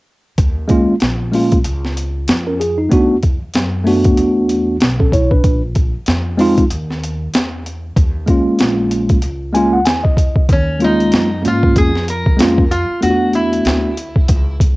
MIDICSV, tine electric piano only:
0, 0, Header, 1, 2, 480
1, 0, Start_track
1, 0, Key_signature, -6, "minor"
1, 0, Tempo, 631579
1, 293, Time_signature, 4, 2, 24, 8
1, 11221, End_track
2, 0, Start_track
2, 0, Title_t, "Tine electric piano"
2, 0, Program_c, 0, 4
2, 516, Note_on_c, 0, 56, 77
2, 521, Note_on_c, 0, 58, 64
2, 530, Note_on_c, 0, 61, 64
2, 539, Note_on_c, 0, 65, 76
2, 706, Note_off_c, 0, 56, 0
2, 708, Note_off_c, 0, 58, 0
2, 713, Note_off_c, 0, 61, 0
2, 717, Note_off_c, 0, 65, 0
2, 999, Note_on_c, 0, 56, 63
2, 1007, Note_on_c, 0, 58, 64
2, 1014, Note_on_c, 0, 61, 56
2, 1024, Note_on_c, 0, 65, 73
2, 1187, Note_off_c, 0, 56, 0
2, 1191, Note_off_c, 0, 58, 0
2, 1195, Note_off_c, 0, 61, 0
2, 1200, Note_off_c, 0, 65, 0
2, 1875, Note_on_c, 0, 70, 52
2, 1882, Note_on_c, 0, 61, 48
2, 1969, Note_off_c, 0, 70, 0
2, 1972, Note_off_c, 0, 61, 0
2, 1974, Note_on_c, 0, 68, 63
2, 2108, Note_off_c, 0, 68, 0
2, 2111, Note_on_c, 0, 63, 59
2, 2198, Note_on_c, 0, 57, 69
2, 2207, Note_on_c, 0, 59, 74
2, 2217, Note_on_c, 0, 62, 71
2, 2223, Note_on_c, 0, 66, 83
2, 2341, Note_off_c, 0, 63, 0
2, 2387, Note_off_c, 0, 57, 0
2, 2391, Note_off_c, 0, 59, 0
2, 2396, Note_off_c, 0, 62, 0
2, 2399, Note_off_c, 0, 66, 0
2, 2920, Note_on_c, 0, 57, 75
2, 2927, Note_on_c, 0, 59, 66
2, 2938, Note_on_c, 0, 62, 67
2, 2943, Note_on_c, 0, 66, 78
2, 3607, Note_off_c, 0, 57, 0
2, 3611, Note_off_c, 0, 59, 0
2, 3616, Note_off_c, 0, 62, 0
2, 3619, Note_off_c, 0, 66, 0
2, 3797, Note_on_c, 0, 69, 52
2, 3799, Note_on_c, 0, 61, 46
2, 3890, Note_off_c, 0, 69, 0
2, 3891, Note_off_c, 0, 61, 0
2, 3900, Note_on_c, 0, 73, 58
2, 3904, Note_on_c, 0, 64, 52
2, 4031, Note_off_c, 0, 73, 0
2, 4033, Note_off_c, 0, 64, 0
2, 4039, Note_on_c, 0, 71, 61
2, 4044, Note_on_c, 0, 62, 50
2, 4265, Note_off_c, 0, 71, 0
2, 4268, Note_off_c, 0, 62, 0
2, 4844, Note_on_c, 0, 56, 79
2, 4849, Note_on_c, 0, 60, 70
2, 4860, Note_on_c, 0, 63, 72
2, 4869, Note_on_c, 0, 65, 87
2, 5030, Note_off_c, 0, 56, 0
2, 5032, Note_off_c, 0, 60, 0
2, 5038, Note_off_c, 0, 63, 0
2, 5042, Note_off_c, 0, 65, 0
2, 6281, Note_on_c, 0, 56, 66
2, 6289, Note_on_c, 0, 58, 52
2, 6297, Note_on_c, 0, 61, 58
2, 6308, Note_on_c, 0, 65, 67
2, 6968, Note_off_c, 0, 56, 0
2, 6972, Note_off_c, 0, 58, 0
2, 6976, Note_off_c, 0, 61, 0
2, 6982, Note_off_c, 0, 65, 0
2, 7242, Note_on_c, 0, 56, 72
2, 7247, Note_on_c, 0, 58, 68
2, 7254, Note_on_c, 0, 80, 68
2, 7259, Note_on_c, 0, 61, 65
2, 7268, Note_on_c, 0, 65, 81
2, 7385, Note_off_c, 0, 80, 0
2, 7395, Note_on_c, 0, 78, 65
2, 7428, Note_off_c, 0, 56, 0
2, 7431, Note_off_c, 0, 58, 0
2, 7437, Note_off_c, 0, 61, 0
2, 7442, Note_off_c, 0, 65, 0
2, 7487, Note_off_c, 0, 78, 0
2, 7489, Note_on_c, 0, 80, 67
2, 7623, Note_off_c, 0, 80, 0
2, 7627, Note_on_c, 0, 75, 55
2, 7945, Note_off_c, 0, 75, 0
2, 8199, Note_on_c, 0, 55, 47
2, 8206, Note_on_c, 0, 58, 57
2, 8215, Note_on_c, 0, 61, 58
2, 8225, Note_on_c, 0, 65, 71
2, 8247, Note_on_c, 0, 56, 71
2, 8265, Note_off_c, 0, 55, 0
2, 8563, Note_off_c, 0, 58, 0
2, 8568, Note_off_c, 0, 61, 0
2, 8572, Note_off_c, 0, 65, 0
2, 8584, Note_off_c, 0, 56, 0
2, 8679, Note_on_c, 0, 56, 55
2, 8686, Note_on_c, 0, 58, 57
2, 8696, Note_on_c, 0, 61, 54
2, 8703, Note_on_c, 0, 65, 63
2, 9039, Note_off_c, 0, 56, 0
2, 9043, Note_off_c, 0, 58, 0
2, 9048, Note_off_c, 0, 61, 0
2, 9052, Note_off_c, 0, 65, 0
2, 9399, Note_on_c, 0, 56, 74
2, 9410, Note_on_c, 0, 58, 65
2, 9417, Note_on_c, 0, 61, 61
2, 9426, Note_on_c, 0, 65, 76
2, 9587, Note_off_c, 0, 56, 0
2, 9593, Note_off_c, 0, 58, 0
2, 9596, Note_off_c, 0, 61, 0
2, 9601, Note_off_c, 0, 65, 0
2, 9886, Note_on_c, 0, 57, 63
2, 9894, Note_on_c, 0, 59, 57
2, 9901, Note_on_c, 0, 62, 58
2, 9912, Note_on_c, 0, 65, 52
2, 9959, Note_on_c, 0, 66, 69
2, 9961, Note_off_c, 0, 65, 0
2, 10570, Note_off_c, 0, 57, 0
2, 10575, Note_off_c, 0, 59, 0
2, 10578, Note_off_c, 0, 62, 0
2, 10607, Note_off_c, 0, 66, 0
2, 11221, End_track
0, 0, End_of_file